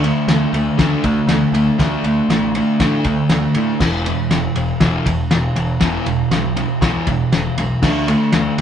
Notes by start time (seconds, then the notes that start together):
Already playing: D2
0.03 D3 A3, ride
0.28 D2 D3 A3, snare, ride
0.53 D2 D3 A3, ride
0.78 D2 D3 A3 D4, kick, snare, ride
1.04 D2 D3 A3, kick, ride
1.27 D2 D3 A3, snare, ride
1.52 D2 D3 A3, ride
1.79 D2 D3 A3 D4, kick, snare, ride
2.03 D2 D3 A3, ride
2.29 A1 D3 A3, snare, ride
2.55 D3 A3, ride
2.80 A2 D3 A3 D4, kick, snare, ride
3.04 D2 D3 A3, kick, ride
3.29 D2 D3 A3, snare, ride
3.55 A2 D3 A3, ride
3.80 E1 E2 B2 E3, kick, snare, crash
4.06 E2 B2, ride
4.31 E1 E2 B2, snare, ride
4.56 E1 E2 B2, ride
4.80 E1 E2 B2 E3, kick, snare, ride
5.06 E1 E2 B2, kick, ride
5.31 E1 E2 B2, snare, ride
5.56 E1 E2 B2, ride
5.80 E1 E2 B2 E3, kick, snare, ride
6.06 E1 E2 B2, ride
6.31 B1 E2 B2, snare, ride
6.56 E2 B2, ride
6.81 B1 E2 B2 E3, kick, snare, ride
7.07 E1 E2 B2, kick, ride
7.32 E1 E2 B2, snare, ride
7.58 B1 E2 B2, ride
7.82 D2 D3 A3 D4, kick, snare, crash
8.08 D3 A3, ride
8.32 D2 D3 A3, snare, ride
8.58 D2, ride